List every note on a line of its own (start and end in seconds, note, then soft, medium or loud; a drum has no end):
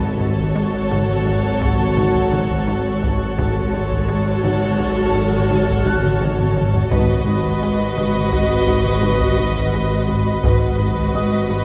0.00 3.34 G#1 medium
0.00 0.87 G#2 medium
0.00 3.34 G#2 medium
0.00 3.19 F#3 medium
0.00 3.19 F#4 medium
0.00 3.34 F#4 medium
0.00 3.35 A4 medium
0.00 3.34 C#5 medium
0.00 3.37 C#5 medium
0.00 3.34 F#5 medium
0.00 3.37 A5 medium
0.00 6.52 C#6 medium
0.20 0.41 G#2 medium
0.38 taiko medium
0.55 0.77 G#3 medium
0.55 5.04 F#6 medium
0.91 1.12 G#2 medium
0.91 taiko mid medium
1.09 taiko mid medium
1.26 1.47 G#2 medium
1.26 taiko medium
1.61 1.83 G#2 medium
1.61 taiko medium
1.79 taiko mid soft
1.97 2.18 G#2 medium
1.97 taiko mid medium
2.15 taiko medium
2.32 2.53 G#2 medium
2.32 taiko mid medium
2.51 taiko medium
2.67 2.88 G#2 medium
3.03 3.24 G#2 medium
3.03 taiko medium
3.36 6.86 G#1 medium
3.36 6.87 G#1 medium
3.36 6.87 G#2 medium
3.36 3.59 G#2 loud
3.36 6.86 F#3 medium
3.36 6.86 F#4 medium
3.36 6.87 F#4 medium
3.36 6.87 A4 medium
3.36 6.87 C#5 medium
3.36 6.87 F#5 medium
3.36 6.87 A5 medium
3.36 taiko medium
3.73 3.94 G#2 medium
3.92 taiko medium
4.08 4.29 G#3 medium
4.44 4.65 G#2 medium
4.44 taiko mid medium
4.62 taiko mid soft
4.80 5.00 G#2 medium
4.80 taiko medium
5.04 6.52 F6 medium
5.15 5.36 G#2 medium
5.15 taiko medium
5.33 taiko mid soft
5.50 5.71 G#2 medium
5.50 taiko mid medium
5.68 taiko medium
5.86 6.07 G#2 medium
5.86 7.93 F#6 medium
5.86 taiko mid medium
6.03 taiko mid medium
6.21 6.42 G#2 medium
6.21 taiko mid medium
6.39 taiko mid medium
6.56 6.77 G#2 medium
6.56 taiko mid medium
6.74 taiko low medium
6.91 10.40 G#1 medium
6.91 7.92 G#2 medium
6.91 7.12 G#2 loud
6.91 10.40 G#2 medium
6.91 7.16 F#3 medium
6.91 10.40 F#4 medium
6.91 10.40 B4 medium
6.91 7.16 B4 medium
6.91 10.42 B4 medium
6.91 10.39 D#5 medium
6.91 10.42 D#5 medium
6.91 10.40 F#5 medium
6.91 taiko medium
7.27 7.48 G#2 medium
7.44 taiko medium
7.63 7.83 G#3 medium
7.97 8.18 G#2 medium
7.97 taiko mid medium
8.14 taiko mid soft
8.32 8.53 G#2 medium
8.32 taiko medium
8.67 8.88 G#2 medium
8.67 taiko medium
8.84 taiko mid soft
9.02 9.24 G#2 medium
9.02 9.27 F#3 medium
9.02 9.27 B4 medium
9.02 taiko mid medium
9.20 taiko medium
9.38 9.59 G#2 medium
9.38 taiko mid medium
9.55 taiko medium
9.74 9.95 G#2 medium
10.09 10.30 G#2 medium
10.09 taiko medium
10.43 11.64 G#1 medium
10.43 11.64 G#2 medium
10.43 10.65 G#2 medium
10.43 10.68 F#3 medium
10.43 11.64 F#4 medium
10.43 11.64 B4 medium
10.43 10.68 B4 medium
10.43 11.64 B4 medium
10.43 11.64 D#5 medium
10.43 11.64 F#5 medium
10.43 taiko medium
10.79 11.00 G#2 medium
10.97 taiko medium
11.15 11.36 G#3 medium
11.15 11.64 D#5 soft
11.15 11.64 D#6 medium
11.50 11.64 G#2 medium